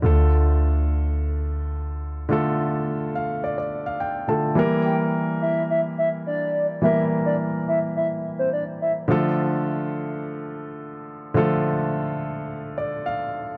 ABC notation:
X:1
M:4/4
L:1/16
Q:1/4=106
K:Dm
V:1 name="Soft synth lead"
z16 | z16 | z2 g z3 e2 e z e z d3 z | e2 z d z2 e z e z2 c d z e z |
z16 | z16 |]
V:2 name="Grand piano"
z16 | z6 f2 d d2 f g2 a2 | z16 | z16 |
z16 | z8 z2 d2 f4 |]
V:3 name="Grand piano"
[D,A,FA]16 | [D,A,FA]12- [D,A,FA]2 [D,A,FA]2 | [E,G,B,GB]16 | [E,G,B,GB]16 |
[D,F,A,FA]16 | [D,F,A,FA]16 |]
V:4 name="808-style bass" clef=bass
D,,16 | z16 | z16 | z16 |
z16 | z16 |]